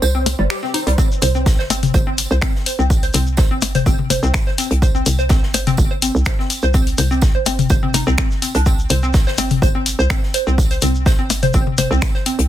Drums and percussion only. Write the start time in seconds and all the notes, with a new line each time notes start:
0.02 tambourine
0.26 open hi-hat, tambourine, percussion blips
0.50 finger snap, snare, tambourine
0.64 snare
0.74 open hi-hat, tambourine
0.87 closed hi-hat, open hi-hat
0.98 kick, tambourine, shekere
1.12 shekere
1.22 open hi-hat, high tom, tambourine, shekere
1.35 shekere
1.46 kick, snare, tambourine, shekere
1.59 snare
1.70 open hi-hat, tambourine, percussion blips, shekere
1.83 open hi-hat, high tom, shekere
1.94 kick, tambourine, shekere
2.18 open hi-hat, tambourine, shekere
2.31 shekere
2.42 finger snap, kick, snare, tambourine, shekere
2.55 snare
2.66 open hi-hat, tambourine, shekere
2.79 shekere
2.90 kick, tambourine, shekere
3.03 open hi-hat, shekere
3.14 open hi-hat, high tom, tambourine, shekere
3.26 shekere
3.37 kick, snare, tambourine, shekere
3.62 open hi-hat, tambourine, percussion blips, shekere
3.75 open hi-hat, high tom, shekere
3.86 kick, tambourine, shekere
3.99 high tom
4.10 open hi-hat, high tom, tambourine, percussion blips, shekere
4.23 shekere
4.34 finger snap, kick, snare, tambourine, shekere
4.47 snare
4.58 open hi-hat, tambourine, shekere
4.71 closed hi-hat, shekere
4.82 kick, tambourine, shekere
4.95 shekere
5.06 open hi-hat, high tom, tambourine, shekere
5.19 shekere
5.29 kick, snare, tambourine, shekere
5.43 snare
5.54 open hi-hat, tambourine, percussion blips, shekere
5.67 open hi-hat, high tom, shekere
5.77 kick, tambourine, shekere
6.02 open hi-hat, tambourine, shekere
6.16 shekere
6.26 finger snap, kick, snare, tambourine, shekere
6.39 snare
6.50 open hi-hat, tambourine, shekere
6.62 shekere
6.74 kick, tambourine, shekere
6.87 open hi-hat, shekere
6.98 open hi-hat, high tom, tambourine, shekere
7.11 shekere
7.21 kick, snare, tambourine, shekere
7.46 open hi-hat, tambourine, percussion blips, shekere
7.59 open hi-hat, high tom, shekere
7.70 kick, tambourine, shekere
7.83 high tom
7.94 open hi-hat, high tom, tambourine, percussion blips, shekere
8.07 shekere
8.18 finger snap, kick, snare, tambourine, shekere
8.31 snare, shekere
8.42 open hi-hat, tambourine, shekere
8.55 closed hi-hat, shekere
8.66 kick, tambourine, shekere
8.79 shekere
8.90 open hi-hat, high tom, tambourine, shekere
9.03 shekere
9.13 kick, snare, tambourine, shekere
9.27 snare
9.38 open hi-hat, tambourine, percussion blips, shekere
9.50 open hi-hat, high tom, shekere
9.62 kick, tambourine, shekere
9.86 open hi-hat, tambourine, shekere
9.99 shekere
10.10 finger snap, kick, snare, tambourine, shekere
10.23 snare
10.34 open hi-hat, tambourine, shekere
10.47 shekere
10.58 kick, tambourine, shekere
10.71 open hi-hat, shekere
10.82 open hi-hat, high tom, tambourine, shekere
10.95 shekere
11.06 kick, snare, tambourine, shekere
11.30 open hi-hat, tambourine, percussion blips, shekere
11.43 open hi-hat, high tom, shekere
11.53 kick, tambourine, shekere
11.67 high tom
11.78 open hi-hat, high tom, tambourine, percussion blips, shekere
11.91 shekere
12.02 finger snap, kick, snare, tambourine, shekere
12.14 snare
12.26 open hi-hat, tambourine, shekere
12.39 closed hi-hat, shekere